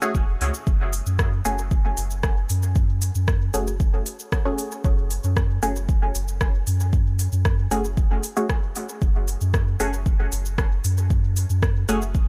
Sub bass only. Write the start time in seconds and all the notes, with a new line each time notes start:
0.15 E1
0.41 C#2
0.67 F#1
1.06 F#2
1.45 F#1
1.97 F#1
2.50 F#2
3.15 F#2
3.54 F#1
4.84 F#1
5.24 F#2
5.63 F#1
6.15 F#1
6.67 F#2
7.32 F#2
7.71 F#1
9.02 F#1
9.41 F#2
9.80 F#1
10.32 F#1
10.84 F#2
11.50 F#2
11.89 F#1